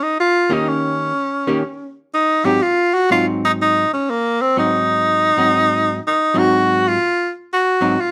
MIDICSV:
0, 0, Header, 1, 3, 480
1, 0, Start_track
1, 0, Tempo, 488202
1, 646, Time_signature, 4, 2, 24, 8
1, 7978, End_track
2, 0, Start_track
2, 0, Title_t, "Tenor saxophone"
2, 0, Program_c, 0, 66
2, 26, Note_on_c, 0, 63, 81
2, 178, Note_off_c, 0, 63, 0
2, 195, Note_on_c, 0, 65, 93
2, 524, Note_on_c, 0, 63, 79
2, 539, Note_off_c, 0, 65, 0
2, 669, Note_on_c, 0, 61, 77
2, 684, Note_off_c, 0, 63, 0
2, 1900, Note_off_c, 0, 61, 0
2, 2104, Note_on_c, 0, 63, 97
2, 2408, Note_on_c, 0, 67, 96
2, 2423, Note_off_c, 0, 63, 0
2, 2579, Note_on_c, 0, 65, 94
2, 2593, Note_off_c, 0, 67, 0
2, 2887, Note_on_c, 0, 66, 91
2, 2902, Note_off_c, 0, 65, 0
2, 3048, Note_off_c, 0, 66, 0
2, 3064, Note_on_c, 0, 65, 84
2, 3202, Note_off_c, 0, 65, 0
2, 3389, Note_on_c, 0, 63, 83
2, 3457, Note_off_c, 0, 63, 0
2, 3553, Note_on_c, 0, 63, 98
2, 3835, Note_off_c, 0, 63, 0
2, 3867, Note_on_c, 0, 61, 79
2, 4030, Note_on_c, 0, 58, 86
2, 4045, Note_off_c, 0, 61, 0
2, 4341, Note_on_c, 0, 60, 85
2, 4356, Note_off_c, 0, 58, 0
2, 4495, Note_off_c, 0, 60, 0
2, 4512, Note_on_c, 0, 63, 98
2, 5900, Note_off_c, 0, 63, 0
2, 5966, Note_on_c, 0, 63, 86
2, 6279, Note_on_c, 0, 66, 100
2, 6293, Note_off_c, 0, 63, 0
2, 6764, Note_on_c, 0, 65, 84
2, 6779, Note_off_c, 0, 66, 0
2, 7190, Note_off_c, 0, 65, 0
2, 7405, Note_on_c, 0, 66, 88
2, 7871, Note_on_c, 0, 65, 80
2, 7886, Note_off_c, 0, 66, 0
2, 7978, Note_off_c, 0, 65, 0
2, 7978, End_track
3, 0, Start_track
3, 0, Title_t, "Hollow-body jazz guitar"
3, 0, Program_c, 1, 26
3, 487, Note_on_c, 1, 51, 67
3, 488, Note_on_c, 1, 58, 68
3, 497, Note_on_c, 1, 61, 68
3, 498, Note_on_c, 1, 67, 80
3, 1095, Note_off_c, 1, 51, 0
3, 1095, Note_off_c, 1, 58, 0
3, 1100, Note_off_c, 1, 61, 0
3, 1100, Note_off_c, 1, 67, 0
3, 1448, Note_on_c, 1, 51, 61
3, 1448, Note_on_c, 1, 58, 60
3, 1451, Note_on_c, 1, 61, 64
3, 1455, Note_on_c, 1, 67, 73
3, 1592, Note_off_c, 1, 51, 0
3, 1592, Note_off_c, 1, 58, 0
3, 1593, Note_off_c, 1, 61, 0
3, 1595, Note_off_c, 1, 67, 0
3, 2400, Note_on_c, 1, 44, 60
3, 2405, Note_on_c, 1, 54, 68
3, 2412, Note_on_c, 1, 60, 74
3, 2413, Note_on_c, 1, 63, 63
3, 2548, Note_off_c, 1, 44, 0
3, 2550, Note_off_c, 1, 54, 0
3, 2554, Note_off_c, 1, 60, 0
3, 2554, Note_off_c, 1, 63, 0
3, 3049, Note_on_c, 1, 44, 60
3, 3053, Note_on_c, 1, 54, 67
3, 3056, Note_on_c, 1, 60, 74
3, 3060, Note_on_c, 1, 63, 64
3, 3781, Note_off_c, 1, 44, 0
3, 3783, Note_off_c, 1, 54, 0
3, 3784, Note_off_c, 1, 60, 0
3, 3786, Note_off_c, 1, 63, 0
3, 4487, Note_on_c, 1, 44, 55
3, 4492, Note_on_c, 1, 54, 65
3, 4495, Note_on_c, 1, 60, 58
3, 4502, Note_on_c, 1, 63, 59
3, 5220, Note_off_c, 1, 44, 0
3, 5222, Note_off_c, 1, 54, 0
3, 5224, Note_off_c, 1, 60, 0
3, 5227, Note_off_c, 1, 63, 0
3, 5278, Note_on_c, 1, 44, 58
3, 5286, Note_on_c, 1, 63, 65
3, 5288, Note_on_c, 1, 54, 63
3, 5292, Note_on_c, 1, 60, 63
3, 5891, Note_off_c, 1, 44, 0
3, 5895, Note_off_c, 1, 63, 0
3, 5896, Note_off_c, 1, 54, 0
3, 5898, Note_off_c, 1, 60, 0
3, 6235, Note_on_c, 1, 54, 73
3, 6240, Note_on_c, 1, 44, 72
3, 6245, Note_on_c, 1, 63, 76
3, 6247, Note_on_c, 1, 60, 78
3, 6850, Note_off_c, 1, 54, 0
3, 6852, Note_off_c, 1, 44, 0
3, 6855, Note_off_c, 1, 63, 0
3, 6856, Note_off_c, 1, 60, 0
3, 7678, Note_on_c, 1, 54, 72
3, 7679, Note_on_c, 1, 44, 59
3, 7682, Note_on_c, 1, 60, 68
3, 7686, Note_on_c, 1, 63, 78
3, 7827, Note_off_c, 1, 54, 0
3, 7828, Note_off_c, 1, 44, 0
3, 7830, Note_off_c, 1, 60, 0
3, 7832, Note_off_c, 1, 63, 0
3, 7978, End_track
0, 0, End_of_file